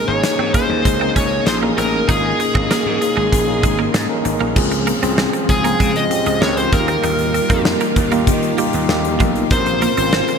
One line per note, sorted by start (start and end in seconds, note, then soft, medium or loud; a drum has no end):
0.00 0.07 A#3 medium
0.00 0.08 C#4 medium
0.00 0.08 D#4 medium
0.00 0.09 G#4 medium
0.00 4.53 A#4 medium
0.00 4.53 D#5 medium
0.00 4.53 G#5 medium
0.07 0.20 G#1 medium
0.07 0.50 A#3 medium
0.07 0.50 C#4 medium
0.07 0.50 D#4 medium
0.07 0.50 G#4 medium
0.07 0.51 C#5 loud
0.23 muted clean electric guitar stroke soft
0.23 snare loud
0.23 closed hi-hat medium
0.39 0.51 G#2 medium
0.39 0.49 C4 medium
0.53 0.96 A#3 medium
0.53 0.64 A#3 medium
0.53 0.96 C#4 medium
0.53 0.96 D#4 medium
0.53 0.97 G#4 medium
0.53 1.12 C5 medium
0.53 kick medium
0.53 closed hi-hat medium
0.69 0.81 D#2 loud
0.85 1.08 C#2 medium
0.85 muted clean electric guitar stroke soft
0.85 kick medium
0.85 closed hi-hat medium
1.00 1.56 A#3 medium
1.00 1.11 C4 medium
1.00 1.56 C#4 medium
1.00 1.57 D#4 medium
1.00 1.57 A#4 medium
1.16 1.39 C#2 medium
1.16 1.26 C#4 medium
1.16 1.46 C#5 medium
1.16 kick medium
1.16 closed hi-hat medium
1.46 1.70 A#1 medium
1.46 1.55 C5 medium
1.46 muted clean electric guitar stroke soft
1.46 snare loud
1.46 closed hi-hat medium
1.62 2.04 A#3 medium
1.62 1.73 A#3 medium
1.62 2.05 C#4 medium
1.62 2.05 D#4 medium
1.62 2.05 G#4 medium
1.78 2.01 A1 medium
1.78 1.88 C4 medium
1.78 2.07 A#4 medium
1.78 closed hi-hat medium
2.08 2.32 G#1 loud
2.08 2.51 A#3 medium
2.08 2.51 C#4 medium
2.08 2.19 D#4 medium
2.08 2.51 D#4 medium
2.08 2.51 F4 medium
2.08 3.90 G#4 medium
2.08 4.54 C6 medium
2.08 kick loud
2.08 closed hi-hat medium
2.40 muted clean electric guitar stroke soft
2.40 closed hi-hat medium
2.54 2.67 G#1 loud
2.54 2.97 A#3 medium
2.54 2.65 C4 medium
2.54 2.97 C#4 medium
2.54 2.97 D#4 medium
2.54 2.98 G#4 medium
2.54 kick medium
2.71 2.81 A#3 medium
2.71 snare loud
2.71 closed hi-hat medium
2.86 2.98 G#2 medium
3.01 3.44 A#3 medium
3.01 3.44 C#4 medium
3.01 3.44 D#4 medium
3.01 3.44 G#4 medium
3.01 muted clean electric guitar stroke soft
3.01 closed hi-hat medium
3.17 3.29 G#1 medium
3.17 3.27 G#3 medium
3.32 3.64 A#1 medium
3.32 muted clean electric guitar stroke soft
3.32 kick medium
3.32 closed hi-hat medium
3.47 4.04 A#3 medium
3.47 4.04 C#4 medium
3.47 4.04 D#4 medium
3.47 4.04 G#4 loud
3.63 3.87 G#1 medium
3.63 3.73 G#3 medium
3.63 kick medium
3.63 closed hi-hat medium
3.79 3.89 A#3 medium
3.94 4.06 G#2 loud
3.94 4.04 C4 medium
3.94 snare loud
3.94 closed hi-hat medium
4.09 4.52 A#3 medium
4.09 4.52 C#4 medium
4.09 4.52 D#4 medium
4.09 4.52 A#4 medium
4.25 4.37 G#1 medium
4.25 muted clean electric guitar stroke soft
4.25 closed hi-hat medium
4.41 4.52 A#1 medium
4.41 4.51 A#3 medium
4.55 4.91 C#2 loud
4.55 6.70 F3 medium
4.55 6.70 G#3 medium
4.55 4.98 C4 medium
4.55 4.98 C#4 medium
4.55 9.47 F4 medium
4.55 4.98 F4 medium
4.55 4.99 G#4 medium
4.55 6.70 C5 medium
4.55 kick loud
4.55 crash medium
4.71 muted clean electric guitar stroke soft
4.71 closed hi-hat soft
4.87 4.97 A#3 medium
4.87 closed hi-hat medium
5.02 5.26 C2 medium
5.02 5.59 C4 medium
5.02 5.13 C4 medium
5.02 5.59 C#4 medium
5.02 5.59 F4 medium
5.02 5.59 G#4 medium
5.02 closed hi-hat soft
5.18 5.28 C4 medium
5.18 snare loud
5.33 muted clean electric guitar stroke soft
5.33 closed hi-hat medium
5.49 5.72 C#2 medium
5.49 5.97 G#4 medium
5.49 kick medium
5.49 closed hi-hat medium
5.64 5.74 A#3 medium
5.64 6.06 C4 medium
5.64 6.07 C#4 medium
5.64 6.07 F4 medium
5.64 6.07 G#4 medium
5.64 closed hi-hat medium
5.80 6.03 C#3 loud
5.80 5.90 G#3 medium
5.80 kick medium
5.80 closed hi-hat medium
5.96 6.42 D#5 loud
5.96 closed hi-hat soft
6.10 6.39 C4 medium
6.10 6.39 C#4 medium
6.10 6.39 F4 medium
6.10 6.39 G4 medium
6.10 muted clean electric guitar stroke soft
6.10 closed hi-hat medium
6.26 6.38 C#2 medium
6.26 6.36 G#3 medium
6.26 closed hi-hat soft
6.41 6.65 C#2 medium
6.41 6.52 A#3 medium
6.41 6.72 C4 medium
6.41 6.72 C#4 medium
6.41 6.71 F4 medium
6.41 6.73 A#4 medium
6.41 6.56 C#5 medium
6.41 snare loud
6.57 6.72 C5 medium
6.57 closed hi-hat soft
6.72 6.96 D#2 loud
6.72 9.48 D#3 medium
6.72 9.48 G3 medium
6.72 7.43 A#3 medium
6.72 10.38 A#3 medium
6.72 7.43 D#4 medium
6.72 7.43 F4 medium
6.72 7.43 G4 medium
6.72 7.62 A#4 medium
6.72 muted clean electric guitar stroke soft
6.72 kick loud
6.72 closed hi-hat medium
6.88 6.98 C4 medium
6.88 closed hi-hat soft
7.03 7.39 D#2 loud
7.03 7.14 D#4 medium
7.03 closed hi-hat medium
7.19 closed hi-hat soft
7.34 muted clean electric guitar stroke soft
7.34 closed hi-hat medium
7.50 7.73 F2 medium
7.50 8.06 A#3 medium
7.50 7.60 C4 medium
7.50 8.06 D#4 medium
7.50 8.06 F4 medium
7.50 8.07 A#4 loud
7.50 kick loud
7.50 closed hi-hat medium
7.65 snare loud
7.80 7.91 A#3 medium
7.80 closed hi-hat medium
7.96 8.29 D#2 medium
7.96 muted clean electric guitar stroke soft
7.96 kick medium
7.96 closed hi-hat medium
8.12 8.54 A#3 medium
8.12 8.22 A#3 medium
8.12 8.54 D#4 medium
8.12 8.54 F4 medium
8.12 8.54 G4 medium
8.12 closed hi-hat medium
8.27 8.51 D#3 loud
8.27 kick medium
8.27 closed hi-hat medium
8.42 closed hi-hat soft
8.58 8.68 G3 medium
8.58 8.86 A#3 medium
8.58 8.87 D#4 medium
8.58 8.87 F4 medium
8.58 8.87 G4 medium
8.58 closed hi-hat medium
8.73 8.86 D#2 medium
8.73 closed hi-hat soft
8.89 9.20 D#2 medium
8.89 9.45 A#3 medium
8.89 9.45 D#4 medium
8.89 9.46 F4 medium
8.89 9.46 G4 medium
8.89 snare loud
9.04 closed hi-hat medium
9.20 9.43 B1 medium
9.20 9.30 F3 medium
9.20 kick medium
9.20 closed hi-hat medium
9.35 closed hi-hat soft
9.51 9.86 A#1 loud
9.51 10.38 C#3 medium
9.51 9.93 C4 medium
9.51 9.93 C#4 medium
9.51 10.38 F4 medium
9.51 9.93 F4 medium
9.51 9.94 A#4 medium
9.51 10.38 C5 medium
9.51 kick loud
9.51 closed hi-hat medium
9.66 muted clean electric guitar stroke soft
9.66 closed hi-hat soft
9.82 9.92 A#3 medium
9.82 closed hi-hat medium
9.97 10.21 G#1 medium
9.97 10.38 C4 medium
9.97 10.07 C4 medium
9.97 10.38 C#4 medium
9.97 10.38 F4 medium
9.97 10.38 C5 medium
9.97 closed hi-hat medium
10.13 10.23 C4 medium
10.13 snare loud
10.28 muted clean electric guitar stroke soft
10.28 closed hi-hat medium